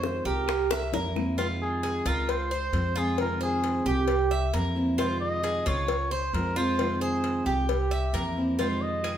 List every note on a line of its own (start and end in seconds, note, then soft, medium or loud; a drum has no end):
0.00 0.19 F2 medium
0.00 0.47 C3 medium
0.00 0.48 D#3 medium
0.00 0.48 G#3 medium
0.00 0.47 C4 medium
0.00 0.49 F4 medium
0.00 0.24 C5 medium
0.00 high bongo medium
0.05 0.26 C5 medium
0.25 0.89 C2 medium
0.25 0.69 G4 medium
0.25 0.90 A#4 medium
0.25 high bongo soft
0.48 muted steel-string acoustic guitar stroke medium
0.48 high bongo medium
0.48 claves medium
0.71 0.93 E5 medium
0.71 high bongo loud
0.93 1.99 F2 medium
0.93 1.15 E3 medium
0.93 1.15 A#3 medium
0.93 1.15 C4 medium
0.93 1.14 E4 medium
0.93 1.37 A#4 medium
0.93 low bongo medium
1.15 1.38 E3 medium
1.15 1.38 A#3 medium
1.15 1.38 C4 medium
1.15 1.37 E4 medium
1.15 low bongo medium
1.15 claves medium
1.38 2.27 C3 medium
1.38 2.28 D#3 medium
1.38 2.28 G#3 medium
1.38 2.29 C4 medium
1.38 1.82 F4 medium
1.38 1.48 F4 medium
1.38 2.29 F4 medium
1.38 cowbell loud
1.62 2.09 G#4 medium
1.83 2.05 G#4 medium
1.83 cowbell medium
2.05 2.69 C#2 medium
2.05 2.50 F4 medium
2.05 2.32 A#4 loud
2.05 cowbell medium
2.29 2.99 C5 loud
2.29 muted steel-string acoustic guitar stroke medium
2.29 cowbell loud
2.51 2.95 C5 medium
2.73 3.79 F2 loud
2.73 2.95 F3 medium
2.73 2.95 G#3 medium
2.73 2.94 C4 medium
2.73 2.94 F4 medium
2.73 cowbell medium
2.95 3.18 F3 medium
2.95 3.18 G#3 medium
2.95 3.17 C4 medium
2.95 3.17 F4 medium
2.95 3.39 F4 medium
2.95 3.19 G#4 loud
3.18 4.06 C3 medium
3.18 4.07 D#3 medium
3.18 4.07 G#3 medium
3.18 4.08 C4 medium
3.18 4.08 F4 medium
3.18 3.41 A#4 loud
3.18 cowbell loud
3.41 3.84 G#4 loud
3.41 3.85 C5 medium
3.64 cowbell medium
3.86 4.49 C2 loud
3.86 4.30 G4 medium
3.86 4.50 G4 medium
4.07 muted steel-string acoustic guitar stroke medium
4.07 cowbell loud
4.31 4.53 E5 medium
4.53 5.60 F2 medium
4.53 4.75 E3 medium
4.53 4.75 A#3 medium
4.53 4.75 C4 medium
4.53 4.74 E4 medium
4.53 4.97 A#4 medium
4.53 cowbell medium
4.75 4.98 E3 medium
4.75 4.98 A#3 medium
4.75 4.98 C4 medium
4.75 4.97 E4 medium
4.98 5.87 C3 medium
4.98 5.88 D#3 medium
4.98 5.88 G#3 medium
4.98 5.89 C4 medium
4.98 5.42 F4 medium
4.98 5.88 F4 medium
4.98 5.20 C5 loud
4.98 cowbell loud
5.21 5.69 D#5 loud
5.43 5.65 G#4 medium
5.43 cowbell medium
5.66 6.30 C#2 loud
5.66 6.10 F4 medium
5.66 6.13 C#5 loud
5.66 cowbell medium
5.88 muted steel-string acoustic guitar stroke medium
5.88 cowbell loud
6.11 6.55 C5 medium
6.11 6.35 C5 loud
6.33 7.40 F2 loud
6.33 6.55 F3 medium
6.33 6.56 G#3 medium
6.33 6.55 C4 medium
6.33 6.55 F4 medium
6.33 6.59 A#4 loud
6.33 cowbell medium
6.56 6.79 F3 medium
6.56 6.78 G#3 medium
6.56 6.78 C4 medium
6.56 6.78 F4 medium
6.56 7.00 F4 medium
6.56 7.01 C5 loud
6.78 7.67 C3 medium
6.78 7.68 D#3 medium
6.78 7.68 G#3 medium
6.78 7.69 C4 medium
6.78 7.69 F4 medium
6.78 cowbell loud
7.01 7.48 G#4 medium
7.01 7.45 C5 medium
7.24 cowbell medium
7.46 8.10 C2 medium
7.46 7.90 G4 medium
7.46 8.36 G4 medium
7.68 muted steel-string acoustic guitar stroke medium
7.68 cowbell loud
7.91 8.13 E5 medium
8.13 9.18 F2 medium
8.13 8.35 E3 medium
8.13 8.36 A#3 soft
8.13 8.36 C4 medium
8.13 8.35 E4 medium
8.13 8.57 A#4 medium
8.13 cowbell medium
8.36 8.59 E3 medium
8.36 8.58 A#3 medium
8.36 8.58 C4 medium
8.36 8.58 E4 medium
8.59 9.18 C3 medium
8.59 9.18 D#3 medium
8.59 9.18 G#3 medium
8.59 9.18 C4 medium
8.59 9.02 F4 medium
8.59 9.18 F4 medium
8.59 8.83 C5 medium
8.59 cowbell loud
8.82 9.18 D#5 loud
9.04 9.18 G#4 medium
9.04 cowbell medium
9.04 claves medium